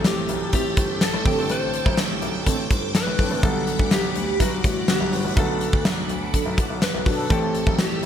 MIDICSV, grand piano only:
0, 0, Header, 1, 2, 480
1, 0, Start_track
1, 0, Key_signature, 1, "major"
1, 0, Tempo, 483871
1, 1486, Time_signature, 4, 2, 24, 8
1, 7993, End_track
2, 0, Start_track
2, 0, Title_t, "Grand piano"
2, 0, Program_c, 0, 0
2, 45, Note_on_c, 0, 33, 86
2, 225, Note_off_c, 0, 33, 0
2, 289, Note_on_c, 0, 35, 86
2, 526, Note_on_c, 0, 33, 85
2, 528, Note_off_c, 0, 35, 0
2, 706, Note_off_c, 0, 33, 0
2, 764, Note_on_c, 0, 31, 82
2, 945, Note_off_c, 0, 31, 0
2, 1126, Note_on_c, 0, 33, 90
2, 1216, Note_off_c, 0, 33, 0
2, 1244, Note_on_c, 0, 33, 85
2, 1335, Note_off_c, 0, 33, 0
2, 1369, Note_on_c, 0, 31, 80
2, 1458, Note_off_c, 0, 31, 0
2, 1487, Note_on_c, 0, 33, 92
2, 1757, Note_off_c, 0, 33, 0
2, 1844, Note_on_c, 0, 35, 83
2, 1935, Note_off_c, 0, 35, 0
2, 1966, Note_on_c, 0, 33, 92
2, 2146, Note_off_c, 0, 33, 0
2, 2204, Note_on_c, 0, 35, 91
2, 2385, Note_off_c, 0, 35, 0
2, 2444, Note_on_c, 0, 33, 95
2, 2625, Note_off_c, 0, 33, 0
2, 2682, Note_on_c, 0, 31, 80
2, 2864, Note_off_c, 0, 31, 0
2, 3044, Note_on_c, 0, 33, 84
2, 3135, Note_off_c, 0, 33, 0
2, 3164, Note_on_c, 0, 31, 81
2, 3255, Note_off_c, 0, 31, 0
2, 3283, Note_on_c, 0, 33, 83
2, 3374, Note_off_c, 0, 33, 0
2, 3403, Note_on_c, 0, 35, 103
2, 3674, Note_off_c, 0, 35, 0
2, 3763, Note_on_c, 0, 38, 77
2, 3854, Note_off_c, 0, 38, 0
2, 3886, Note_on_c, 0, 35, 84
2, 4066, Note_off_c, 0, 35, 0
2, 4126, Note_on_c, 0, 38, 88
2, 4306, Note_off_c, 0, 38, 0
2, 4364, Note_on_c, 0, 35, 89
2, 4545, Note_off_c, 0, 35, 0
2, 4603, Note_on_c, 0, 33, 79
2, 4784, Note_off_c, 0, 33, 0
2, 4966, Note_on_c, 0, 35, 84
2, 5056, Note_off_c, 0, 35, 0
2, 5082, Note_on_c, 0, 31, 86
2, 5173, Note_off_c, 0, 31, 0
2, 5203, Note_on_c, 0, 33, 85
2, 5294, Note_off_c, 0, 33, 0
2, 5324, Note_on_c, 0, 35, 102
2, 5595, Note_off_c, 0, 35, 0
2, 5684, Note_on_c, 0, 38, 85
2, 5805, Note_off_c, 0, 38, 0
2, 5805, Note_on_c, 0, 35, 92
2, 5985, Note_off_c, 0, 35, 0
2, 6046, Note_on_c, 0, 38, 86
2, 6226, Note_off_c, 0, 38, 0
2, 6406, Note_on_c, 0, 35, 85
2, 6496, Note_off_c, 0, 35, 0
2, 6523, Note_on_c, 0, 33, 81
2, 6614, Note_off_c, 0, 33, 0
2, 6649, Note_on_c, 0, 35, 82
2, 6738, Note_off_c, 0, 35, 0
2, 6767, Note_on_c, 0, 35, 26
2, 6815, Note_off_c, 0, 35, 0
2, 6886, Note_on_c, 0, 35, 79
2, 6976, Note_off_c, 0, 35, 0
2, 7004, Note_on_c, 0, 47, 85
2, 7185, Note_off_c, 0, 47, 0
2, 7244, Note_on_c, 0, 33, 107
2, 7515, Note_off_c, 0, 33, 0
2, 7606, Note_on_c, 0, 35, 86
2, 7696, Note_off_c, 0, 35, 0
2, 7723, Note_on_c, 0, 33, 83
2, 7904, Note_off_c, 0, 33, 0
2, 7993, End_track
0, 0, End_of_file